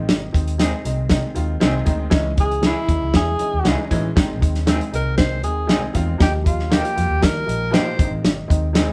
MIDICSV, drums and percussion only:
0, 0, Header, 1, 2, 480
1, 0, Start_track
1, 0, Key_signature, -4, "major"
1, 0, Tempo, 508906
1, 86, Time_signature, 4, 2, 24, 8
1, 8420, End_track
2, 0, Start_track
2, 0, Title_t, "Drums"
2, 83, Note_on_c, 9, 38, 118
2, 84, Note_on_c, 9, 42, 78
2, 177, Note_off_c, 9, 38, 0
2, 178, Note_off_c, 9, 42, 0
2, 324, Note_on_c, 9, 36, 91
2, 331, Note_on_c, 9, 42, 70
2, 418, Note_off_c, 9, 36, 0
2, 425, Note_off_c, 9, 42, 0
2, 448, Note_on_c, 9, 42, 52
2, 542, Note_off_c, 9, 42, 0
2, 560, Note_on_c, 9, 42, 91
2, 561, Note_on_c, 9, 38, 95
2, 655, Note_off_c, 9, 42, 0
2, 656, Note_off_c, 9, 38, 0
2, 804, Note_on_c, 9, 42, 64
2, 899, Note_off_c, 9, 42, 0
2, 1032, Note_on_c, 9, 38, 100
2, 1037, Note_on_c, 9, 42, 80
2, 1047, Note_on_c, 9, 36, 85
2, 1127, Note_off_c, 9, 38, 0
2, 1131, Note_off_c, 9, 42, 0
2, 1141, Note_off_c, 9, 36, 0
2, 1278, Note_on_c, 9, 42, 66
2, 1373, Note_off_c, 9, 42, 0
2, 1519, Note_on_c, 9, 42, 73
2, 1522, Note_on_c, 9, 38, 105
2, 1613, Note_off_c, 9, 42, 0
2, 1616, Note_off_c, 9, 38, 0
2, 1756, Note_on_c, 9, 42, 63
2, 1761, Note_on_c, 9, 36, 87
2, 1851, Note_off_c, 9, 42, 0
2, 1855, Note_off_c, 9, 36, 0
2, 1992, Note_on_c, 9, 38, 110
2, 1993, Note_on_c, 9, 42, 84
2, 2000, Note_on_c, 9, 36, 107
2, 2086, Note_off_c, 9, 38, 0
2, 2087, Note_off_c, 9, 42, 0
2, 2094, Note_off_c, 9, 36, 0
2, 2240, Note_on_c, 9, 42, 64
2, 2243, Note_on_c, 9, 36, 92
2, 2334, Note_off_c, 9, 42, 0
2, 2338, Note_off_c, 9, 36, 0
2, 2372, Note_on_c, 9, 42, 53
2, 2466, Note_off_c, 9, 42, 0
2, 2478, Note_on_c, 9, 42, 81
2, 2479, Note_on_c, 9, 38, 98
2, 2572, Note_off_c, 9, 42, 0
2, 2573, Note_off_c, 9, 38, 0
2, 2722, Note_on_c, 9, 36, 82
2, 2723, Note_on_c, 9, 42, 64
2, 2816, Note_off_c, 9, 36, 0
2, 2817, Note_off_c, 9, 42, 0
2, 2959, Note_on_c, 9, 38, 107
2, 2964, Note_on_c, 9, 42, 76
2, 2972, Note_on_c, 9, 36, 81
2, 3053, Note_off_c, 9, 38, 0
2, 3058, Note_off_c, 9, 42, 0
2, 3066, Note_off_c, 9, 36, 0
2, 3199, Note_on_c, 9, 42, 63
2, 3293, Note_off_c, 9, 42, 0
2, 3441, Note_on_c, 9, 42, 65
2, 3444, Note_on_c, 9, 38, 105
2, 3535, Note_off_c, 9, 42, 0
2, 3538, Note_off_c, 9, 38, 0
2, 3688, Note_on_c, 9, 42, 72
2, 3689, Note_on_c, 9, 36, 80
2, 3782, Note_off_c, 9, 42, 0
2, 3783, Note_off_c, 9, 36, 0
2, 3930, Note_on_c, 9, 36, 112
2, 3931, Note_on_c, 9, 38, 111
2, 3932, Note_on_c, 9, 42, 88
2, 4024, Note_off_c, 9, 36, 0
2, 4025, Note_off_c, 9, 38, 0
2, 4026, Note_off_c, 9, 42, 0
2, 4172, Note_on_c, 9, 36, 88
2, 4176, Note_on_c, 9, 42, 66
2, 4266, Note_off_c, 9, 36, 0
2, 4270, Note_off_c, 9, 42, 0
2, 4292, Note_on_c, 9, 38, 31
2, 4295, Note_on_c, 9, 42, 52
2, 4386, Note_off_c, 9, 38, 0
2, 4390, Note_off_c, 9, 42, 0
2, 4405, Note_on_c, 9, 42, 91
2, 4406, Note_on_c, 9, 38, 101
2, 4499, Note_off_c, 9, 42, 0
2, 4500, Note_off_c, 9, 38, 0
2, 4537, Note_on_c, 9, 42, 43
2, 4631, Note_off_c, 9, 42, 0
2, 4656, Note_on_c, 9, 42, 61
2, 4750, Note_off_c, 9, 42, 0
2, 4883, Note_on_c, 9, 38, 116
2, 4888, Note_on_c, 9, 42, 79
2, 4896, Note_on_c, 9, 36, 87
2, 4978, Note_off_c, 9, 38, 0
2, 4982, Note_off_c, 9, 42, 0
2, 4990, Note_off_c, 9, 36, 0
2, 5126, Note_on_c, 9, 42, 61
2, 5220, Note_off_c, 9, 42, 0
2, 5367, Note_on_c, 9, 42, 71
2, 5370, Note_on_c, 9, 38, 108
2, 5461, Note_off_c, 9, 42, 0
2, 5464, Note_off_c, 9, 38, 0
2, 5608, Note_on_c, 9, 42, 66
2, 5610, Note_on_c, 9, 36, 84
2, 5702, Note_off_c, 9, 42, 0
2, 5705, Note_off_c, 9, 36, 0
2, 5852, Note_on_c, 9, 38, 101
2, 5853, Note_on_c, 9, 36, 112
2, 5853, Note_on_c, 9, 42, 82
2, 5946, Note_off_c, 9, 38, 0
2, 5947, Note_off_c, 9, 36, 0
2, 5947, Note_off_c, 9, 42, 0
2, 6094, Note_on_c, 9, 36, 97
2, 6097, Note_on_c, 9, 42, 64
2, 6188, Note_off_c, 9, 36, 0
2, 6191, Note_off_c, 9, 42, 0
2, 6222, Note_on_c, 9, 38, 32
2, 6316, Note_off_c, 9, 38, 0
2, 6334, Note_on_c, 9, 42, 85
2, 6335, Note_on_c, 9, 38, 102
2, 6428, Note_off_c, 9, 42, 0
2, 6429, Note_off_c, 9, 38, 0
2, 6460, Note_on_c, 9, 42, 49
2, 6554, Note_off_c, 9, 42, 0
2, 6579, Note_on_c, 9, 42, 64
2, 6674, Note_off_c, 9, 42, 0
2, 6815, Note_on_c, 9, 38, 103
2, 6819, Note_on_c, 9, 42, 85
2, 6823, Note_on_c, 9, 36, 95
2, 6909, Note_off_c, 9, 38, 0
2, 6914, Note_off_c, 9, 42, 0
2, 6917, Note_off_c, 9, 36, 0
2, 7065, Note_on_c, 9, 42, 61
2, 7160, Note_off_c, 9, 42, 0
2, 7296, Note_on_c, 9, 42, 81
2, 7299, Note_on_c, 9, 38, 103
2, 7390, Note_off_c, 9, 42, 0
2, 7393, Note_off_c, 9, 38, 0
2, 7538, Note_on_c, 9, 36, 101
2, 7540, Note_on_c, 9, 42, 66
2, 7632, Note_off_c, 9, 36, 0
2, 7635, Note_off_c, 9, 42, 0
2, 7777, Note_on_c, 9, 38, 101
2, 7778, Note_on_c, 9, 42, 81
2, 7872, Note_off_c, 9, 38, 0
2, 7873, Note_off_c, 9, 42, 0
2, 8020, Note_on_c, 9, 36, 91
2, 8027, Note_on_c, 9, 42, 61
2, 8115, Note_off_c, 9, 36, 0
2, 8122, Note_off_c, 9, 42, 0
2, 8255, Note_on_c, 9, 42, 91
2, 8256, Note_on_c, 9, 38, 109
2, 8349, Note_off_c, 9, 42, 0
2, 8350, Note_off_c, 9, 38, 0
2, 8420, End_track
0, 0, End_of_file